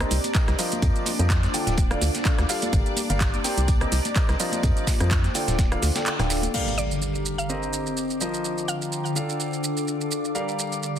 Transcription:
Already playing: C4 D4 G4 D5 A#5
0.00 C4 G4 A#4 C5 D#5, cross-stick, closed hi-hat, shaker
0.11 C2, closed hi-hat, open hi-hat, tambourine, shaker
0.24 closed hi-hat, tambourine, high conga, shaker
0.35 G4 A#4 C5 D#5, kick, snare, clap, closed hi-hat, tambourine, shaker
0.48 C2, cross-stick, snare, closed hi-hat, tambourine, shaker
0.58 F3 F4 A#4 C5 D#5, closed hi-hat, open hi-hat, tambourine, shaker
0.71 closed hi-hat, tambourine, high conga, shaker
0.82 F2, kick, closed hi-hat, tambourine, shaker
0.95 closed hi-hat, tambourine, shaker
1.02 C5 G5 A#5, high conga
1.06 closed hi-hat, open hi-hat, tambourine, shaker
1.19 F2 F3 F4 A#4 C5 D#5, closed hi-hat, tambourine, shaker
1.30 kick, snare, clap, closed hi-hat, tambourine, shaker
1.43 snare, closed hi-hat, tambourine, high conga, shaker
1.54 D3 D4 F4 A4 D5 G5, closed hi-hat, open hi-hat, tambourine, shaker
1.67 D1, snare, closed hi-hat, tambourine, shaker
1.76 D5, kick, closed hi-hat, tambourine, high conga, shaker
1.86 A4
1.91 D3 F4 A4 D5 F5, cross-stick, closed hi-hat, tambourine, shaker
2.02 D2, closed hi-hat, open hi-hat, tambourine, shaker
2.08 F5
2.14 snare, closed hi-hat, tambourine, high conga, shaker
2.25 D3 F4 A4 D5 F5, kick, snare, clap, closed hi-hat, tambourine, shaker
2.38 D2, cross-stick, snare, closed hi-hat, tambourine, shaker
2.49 G3 F4 A4 D5 F5, open hi-hat, tambourine, shaker
2.62 closed hi-hat, tambourine, high conga, shaker
2.73 G1 G3 G4 A#4 D5 F5, kick, closed hi-hat, tambourine, shaker
2.86 closed hi-hat, tambourine, shaker
2.96 closed hi-hat, open hi-hat, tambourine, high conga, shaker
3.10 G1 G3 G4 A#4 D5 F5, closed hi-hat, tambourine, shaker
3.17 A#5, kick, closed hi-hat
3.21 snare, clap, closed hi-hat, shaker
3.34 closed hi-hat, tambourine, high conga, shaker
3.44 C4 G4 A#4 D5 G5, snare, closed hi-hat, open hi-hat, tambourine, shaker
3.57 C2, closed hi-hat, tambourine, shaker
3.68 C4, kick, closed hi-hat, tambourine, high conga, shaker
3.81 C4 G4 A#4 C5 D#5, cross-stick, closed hi-hat, tambourine, shaker
3.92 C2, closed hi-hat, open hi-hat, tambourine, shaker
4.05 closed hi-hat, tambourine, high conga, shaker
4.15 G4 A#4 C5 D#5, kick, snare, clap, closed hi-hat, tambourine, shaker
4.29 C2, cross-stick, snare, closed hi-hat, tambourine, shaker
4.39 F3 F4 A#4 C5 D#5, open hi-hat, tambourine, shaker
4.52 C5, closed hi-hat, tambourine, high conga, shaker
4.63 F2, kick, closed hi-hat, tambourine, shaker
4.77 closed hi-hat, tambourine, shaker
4.83 G5 A#5
4.87 kick, snare, closed hi-hat, open hi-hat, tambourine, high conga, shaker
5.00 F2 F3 F4 A#4 C5 D#5, cross-stick, closed hi-hat, tambourine, shaker
5.11 kick, snare, clap, closed hi-hat, tambourine, shaker
5.24 snare, closed hi-hat, tambourine, high conga, shaker
5.34 D3 D4 F4 A4 D5 G5, closed hi-hat, open hi-hat, tambourine, shaker
5.48 D1, snare, closed hi-hat, tambourine, shaker
5.58 kick, snare, closed hi-hat, tambourine, high conga, shaker
5.65 A4
5.72 D3 F4 A4 D5 F5, cross-stick, closed hi-hat, tambourine, shaker
5.82 D2, snare, closed hi-hat, open hi-hat, tambourine, shaker
5.89 D5 F5
5.95 D3 F4 A4 D5 G5, snare, closed hi-hat, tambourine, high conga, shaker
6.06 clap, closed hi-hat, tambourine, shaker
6.19 D1 D3 F4 A4 D5 G5, cross-stick, snare, closed hi-hat, tambourine, shaker
6.30 snare, closed hi-hat, open hi-hat, tambourine, shaker
6.43 closed hi-hat, tambourine, high conga, shaker
6.54 D3 G3 G4 A#4 D5 F5 D6, crash, impact, shaker
6.68 shaker
6.78 D5, shaker
6.91 shaker
6.97 A#5
7.02 shaker
7.15 shaker
7.26 shaker
7.38 F5, shaker
7.49 C4 G4 A#4 C5 D#5, shaker
7.63 shaker
7.73 shaker
7.86 shaker
7.97 shaker
8.10 shaker
8.21 F3 F4 A#4 C5 D#5, shaker
8.34 shaker
8.41 C5 G5 A#5
8.45 shaker
8.58 shaker
8.68 F5, shaker
8.82 shaker
8.92 shaker
9.06 shaker
9.16 D3 D4 F4 A4 D5 F5, shaker
9.29 A4, shaker
9.40 shaker
9.53 shaker
9.64 shaker
9.70 D5 F5
9.77 shaker
9.88 shaker
10.01 shaker
10.12 shaker
10.25 shaker
10.35 G3 G4 A#4 D5 F5, shaker
10.49 shaker
10.59 shaker
10.72 shaker
10.79 A#5
10.83 shaker

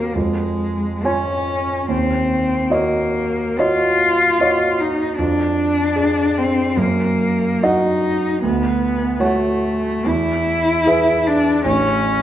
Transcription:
Already playing: D#2 A#3 F#4 C5 F#5
0.15 F2 G#3
1.04 C#4 F4 C#5 G#5
1.89 D#2 C4
2.70 A#3 F#4 C#5 D#5
3.59 F4 F#4 C#5 D#5
4.40 F#4 C#5 D#5
4.81 D#4
5.19 F2 D4
5.96 G#4 D5
6.38 C4
6.77 F#2 A#3
7.63 D#4 F#4 D#5 F#5
8.43 D2 B3
9.20 A3 F#4 C#5 F#5
10.06 E2 E4
10.86 G#4 B4 E5
11.27 D4
11.65 A1 C#4

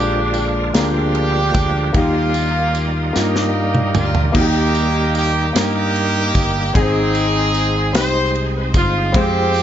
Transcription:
Already playing: A#1 A#2 D3 F3 G#3 A#3 D4 F4 G4 A#4
0.34 ride, tambourine
0.74 D2 G#3 A#3 D4 F4 G4 A#4, snare, ride, tambourine
1.15 ride
1.54 D2, kick, ride, tambourine
1.93 D#2 D#3 G3 A#3 D#4 F4 G4, kick, ride
2.34 ride, tambourine
2.75 ride, tambourine
3.13 G2 G3 A#3 D#4 F4, snare, tambourine
3.36 snare
3.75 mid tom
3.94 D2 F4, mid tom, tambourine
4.15 floor tom
4.32 D#2 D#3 G3 A#3 D#4 F#4, kick, crash
4.37 G4
4.41 G4
4.75 ride, tambourine
5.15 G4, ride, tambourine
5.53 G2 A#3 D#4 A#4, snare, ride, tambourine
5.57 G4
5.96 ride
6.35 G1, kick, ride, tambourine
6.74 G#1 G#2 G#3 C4 D#4 G#4, kick, ride
7.15 ride, tambourine
7.54 ride, tambourine
7.93 C2 C4 D#4 G4 C5, snare, ride, tambourine
8.35 ride
8.74 G1 F4, kick, ride, tambourine
9.12 F2 G#3 C4 F4 G4, kick, ride
9.54 ride, tambourine

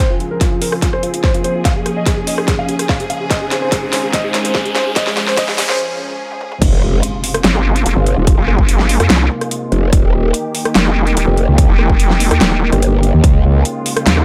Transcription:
Already playing: C5 F5 A#5
0.00 F3 C4 F4 G#4, riser
0.10 F4
0.20 F4 A#4, closed hi-hat
0.31 A#4
0.41 F4, kick, snare, closed hi-hat
0.52 F4
0.57 D#5
0.61 A#4, open hi-hat
0.72 F4 G#5, cross-stick
0.82 F4, kick, snare, closed hi-hat
0.93 C5, cross-stick
1.03 F4, closed hi-hat
1.14 F4, closed hi-hat
1.23 C5, kick, snare
1.34 F4, closed hi-hat
1.44 C5, closed hi-hat
1.55 F4
1.65 C#4 F5, kick, snare, closed hi-hat
1.76 G#4
1.86 G#4, cross-stick, closed hi-hat
1.97 C5 D#5
2.06 G#4 F5, kick, snare, closed hi-hat
2.17 G#4
2.27 D#5, open hi-hat
2.38 G#4 A#5, cross-stick
2.48 G#4, kick, snare, closed hi-hat
2.59 F5
2.69 G#4, closed hi-hat
2.79 G#4, cross-stick, closed hi-hat
2.89 F5, kick, snare
3.00 G#4, closed hi-hat
3.10 F5, closed hi-hat
3.21 G#4
3.30 D#3 G#3 C4 D#5, kick, snare, closed hi-hat
3.41 G#4
3.51 G#4, snare, closed hi-hat
3.62 C5
3.72 G#4, kick, snare, closed hi-hat
3.83 G#4
3.92 C5, snare, open hi-hat
4.03 G#4
4.13 D#5, kick, snare, closed hi-hat
4.24 G#4
4.34 G#4, snare, closed hi-hat
4.45 C5, closed hi-hat
4.55 G#4, kick, snare
4.65 G#4, closed hi-hat
4.75 C5, snare, closed hi-hat
4.86 G#4
4.96 F3 C#4 D#5, kick, snare, closed hi-hat
5.07 G#4, snare
5.17 G#4, snare, closed hi-hat
5.27 C5, snare
5.37 D#5, kick, snare, closed hi-hat
5.48 G#4, snare
5.58 G#4, snare, open hi-hat
5.69 C5, snare
6.31 high tom
6.41 mid tom
6.52 mid tom
6.62 F1 C3 G#3 F4 A#4, kick, closed hi-hat, crash, impact
6.99 G#5
7.03 D#5, closed hi-hat
7.24 open hi-hat
7.34 cross-stick, closed hi-hat
7.44 G1, snare, closed hi-hat
7.55 cross-stick
7.76 closed hi-hat
7.86 F1, closed hi-hat
7.96 G1
8.06 closed hi-hat
8.17 D#1
8.27 kick, closed hi-hat
8.38 G1
8.48 cross-stick
8.59 kick
8.69 closed hi-hat
8.79 snare
8.89 open hi-hat
9.00 F2, cross-stick, closed hi-hat
9.10 C2, snare, closed hi-hat
9.41 cross-stick, closed hi-hat
9.51 closed hi-hat
9.72 F1, closed hi-hat
9.93 D#1 D#3 A#3 G4, kick, closed hi-hat
10.30 G5, closed hi-hat
10.55 open hi-hat
10.65 cross-stick, closed hi-hat
10.75 F1, snare, closed hi-hat
10.86 cross-stick
11.07 closed hi-hat
11.17 D#1, closed hi-hat
11.27 F1
11.37 closed hi-hat
11.48 C#2
11.58 kick, closed hi-hat
11.69 F1
11.79 cross-stick
11.90 kick
12.00 closed hi-hat
12.10 snare
12.20 open hi-hat
12.31 D#2, cross-stick, closed hi-hat
12.41 D#1, snare, closed hi-hat
12.72 G1, cross-stick, closed hi-hat
12.82 closed hi-hat
13.03 closed hi-hat
13.14 D#2
13.24 C#2 C#3 G#3 F4 C5, kick, closed hi-hat
13.50 F5
13.65 closed hi-hat
13.86 A#5, open hi-hat
13.97 cross-stick, closed hi-hat
14.06 D#2, snare, closed hi-hat
14.17 cross-stick

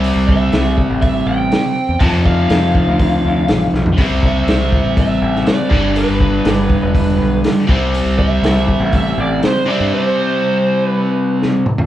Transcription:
Already playing: C2 C3 G3 C4
0.04 open hi-hat
0.16 C2
0.28 E5, kick
0.52 C2, snare, open hi-hat
0.78 kick
0.90 A1
1.01 E5, kick, open hi-hat
1.26 A1 G5
1.52 snare, open hi-hat
1.89 E2
1.99 F2 C3 F3 A5, kick, open hi-hat
2.13 F2
2.25 F5, kick
2.50 F2, snare, open hi-hat
2.75 kick
2.88 D2
2.99 kick, open hi-hat
3.25 D2
3.48 A1, snare, open hi-hat
3.73 B1, snare
3.86 floor tom
3.97 C2 C3 G3, kick, open hi-hat
4.01 C4
4.11 C2
4.23 E5, kick
4.47 C2, snare, open hi-hat
4.72 kick
4.84 A1
4.97 E5, kick, open hi-hat
5.22 A1
5.36 snare
5.47 D5, snare, open hi-hat
5.70 G1 G2 D3, kick
5.74 G3
5.96 B4, open hi-hat
6.09 G1
6.20 kick
6.44 G1, snare, open hi-hat
6.70 kick
6.82 E1
6.95 kick, open hi-hat
7.18 B1
7.44 snare, open hi-hat
7.67 C2 C3 G3 C4, kick
7.94 open hi-hat
8.05 C2
8.19 E5, kick
8.42 C2, snare, open hi-hat
8.68 kick
8.80 A1
8.93 E5, kick, open hi-hat
9.18 A1 D5
9.43 C5, snare, open hi-hat
9.65 C3 G3 C4 D5
9.80 G2
9.94 C5
10.87 B4
11.42 snare
11.66 mid tom
11.78 floor tom

